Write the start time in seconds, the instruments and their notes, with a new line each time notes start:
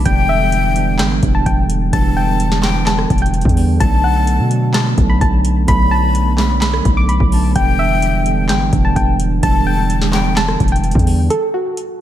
0.03 808-style bass E1, tine electric piano D3 E3 G3 B3, synth pluck G5, flute G5, kick, closed hi-hat
0.08 tine electric piano D4
0.29 synth pluck E5
0.38 tine electric piano D3 E3 G3 B3
0.43 tine electric piano D4
0.52 closed hi-hat
0.73 tine electric piano D3 E3 G3 B3, closed hi-hat
0.79 tine electric piano D4
0.99 808-style bass G1, synth pluck G5, snare, clap, closed hi-hat
1.20 808-style bass E1, tine electric piano D3 E3 G3 B3, kick, closed hi-hat
1.25 tine electric piano D4
1.35 synth pluck A5
1.46 808-style bass E1, synth pluck G5, kick, closed hi-hat
1.70 closed hi-hat
1.90 808-style bass E1, tine electric piano D3 E3 G3 B3, synth pluck A5, flute A5, kick, closed hi-hat
1.96 tine electric piano D4
2.17 synth pluck G5
2.26 tine electric piano D3 E3 G3 B3
2.31 tine electric piano D4
2.40 closed hi-hat
2.52 snare
2.61 tine electric piano D3 E3 G3 B3, flute G5, snare, clap
2.66 tine electric piano D4
2.87 synth pluck A5, snare, clap, closed hi-hat
2.98 cross-stick
3.10 808-style bass E1, kick, closed hi-hat
3.18 synth pluck G5, closed hi-hat
3.26 closed hi-hat
3.34 closed hi-hat
3.41 808-style bass E2, kick, closed hi-hat
3.49 closed hi-hat
3.54 tine electric piano D3 E3 G3 B3, open hi-hat
3.60 tine electric piano D4
3.77 808-style bass B1, tine electric piano D3 F#3 A3 B3, synth pluck A5, flute A5, kick, closed hi-hat
3.82 tine electric piano D4
4.04 synth pluck F#5
4.14 tine electric piano D3 F#3 A3 B3
4.19 tine electric piano D4
4.27 closed hi-hat
4.39 808-style bass B2
4.48 tine electric piano D3 F#3 A3 B3, closed hi-hat
4.53 tine electric piano D4
4.74 synth pluck A5, snare, clap, closed hi-hat
4.95 808-style bass B1, tine electric piano D3 F#3 A3 B3, kick, closed hi-hat
5.01 tine electric piano D4
5.10 synth pluck B5
5.21 808-style bass B1, synth pluck A5, kick, closed hi-hat
5.45 closed hi-hat
5.66 808-style bass B1, tine electric piano D3 F#3 A3 B3, flute B5, synth pluck B5, kick, closed hi-hat
5.71 tine electric piano D4
5.91 synth pluck A5
6.00 tine electric piano D3 F#3 A3 B3
6.06 tine electric piano D4
6.15 closed hi-hat
6.36 tine electric piano D3 F#3 A3 B3, flute B5, snare, clap
6.41 tine electric piano D4
6.62 synth pluck B5, snare, clap, closed hi-hat
6.74 cross-stick
6.85 808-style bass B1, kick, closed hi-hat
6.97 synth pluck D6
7.09 synth pluck B5, closed hi-hat
7.20 808-style bass B1, kick
7.30 tine electric piano D3 F#3 A3 B3, flute A5, open hi-hat
7.35 tine electric piano D4
7.53 808-style bass E1, tine electric piano D3 E3 G3 B3, synth pluck G5, flute G5, kick, closed hi-hat
7.58 tine electric piano D4
7.79 synth pluck E5
7.88 tine electric piano D3 E3 G3 B3
7.93 tine electric piano D4
8.02 closed hi-hat
8.23 tine electric piano D3 E3 G3 B3, closed hi-hat
8.29 tine electric piano D4
8.49 808-style bass G1, synth pluck G5, snare, clap, closed hi-hat
8.70 808-style bass E1, tine electric piano D3 E3 G3 B3, kick, closed hi-hat
8.75 tine electric piano D4
8.85 synth pluck A5
8.96 808-style bass E1, synth pluck G5, kick, closed hi-hat
9.20 closed hi-hat
9.40 808-style bass E1, tine electric piano D3 E3 G3 B3, synth pluck A5, flute A5, kick, closed hi-hat
9.46 tine electric piano D4
9.67 synth pluck G5
9.76 tine electric piano D3 E3 G3 B3
9.81 tine electric piano D4
9.90 closed hi-hat
10.02 snare
10.11 tine electric piano D3 E3 G3 B3, flute G5, snare, clap
10.16 tine electric piano D4
10.37 synth pluck A5, snare, clap, closed hi-hat
10.48 cross-stick
10.60 808-style bass E1, kick, closed hi-hat
10.68 closed hi-hat
10.72 synth pluck G5, closed hi-hat
10.84 closed hi-hat
10.91 808-style bass E2, kick, closed hi-hat
10.99 closed hi-hat
11.04 tine electric piano D3 E3 G3 B3, open hi-hat
11.10 tine electric piano D4
11.30 synth pluck A4, closed hi-hat
11.54 synth pluck F#4
11.77 closed hi-hat